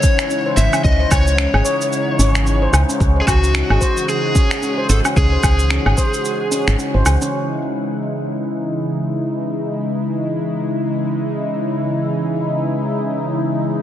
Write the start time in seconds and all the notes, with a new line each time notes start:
Already playing: C#3 E3 G#3 C#4 D#4 E4 C#5 F#5
0.03 C#4, kick, cabasa
0.19 finger snap, cabasa
0.30 C#4, cabasa
0.46 C5
0.57 G#1 E5, cabasa
0.73 C#4, cabasa, low woodblock
0.84 C#2 C#4 D#5, kick, cabasa
1.00 C5
1.11 C#2 C#5, kick, cabasa, low woodblock
1.27 cabasa
1.38 C#4, finger snap, cabasa
1.54 G#1 G#4, low woodblock
1.65 C#5, cabasa
1.81 cabasa
1.93 cabasa
2.19 G#1 C#4, cabasa
2.35 finger snap, cabasa
2.46 C#4, cabasa
2.62 C5
2.73 C#2, cabasa, low woodblock
2.89 C#4, cabasa
3.00 C#2 C#4 F#4, kick, cabasa
3.16 C5
3.21 G#4
3.27 C#2 F#4, kick, cabasa, low woodblock
3.44 cabasa
3.54 C#4, finger snap, cabasa
3.70 G#1 G#4, low woodblock
3.81 C5, kick, cabasa
3.97 cabasa
4.09 G#4, cabasa
4.35 C#4, kick, cabasa
4.51 finger snap, cabasa
4.62 C#4, cabasa
4.78 C5
4.89 G#1 A4, cabasa
5.05 C#4, cabasa, low woodblock
5.16 C#2 C#4 G#4, kick, cabasa
5.32 C5
5.43 C#2, kick, cabasa, low woodblock
5.59 cabasa
5.70 C#4, finger snap, cabasa
5.86 G#1 G#4, low woodblock
5.98 C5, kick, cabasa
6.14 cabasa
6.25 cabasa
6.52 C#4, cabasa
6.68 G#1, finger snap, cabasa
6.79 C#4, cabasa
6.94 G#1 C5
7.06 C#2, cabasa, low woodblock
7.21 C#4, cabasa
7.33 C#3 E3 G#3 D#4 E4